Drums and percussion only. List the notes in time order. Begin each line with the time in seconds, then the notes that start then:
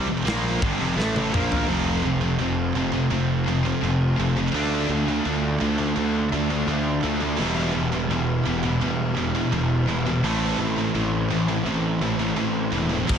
0.27 snare, china
0.62 kick
1.00 snare
1.16 high tom
1.34 mid tom
1.52 floor tom
13.09 kick, china, crash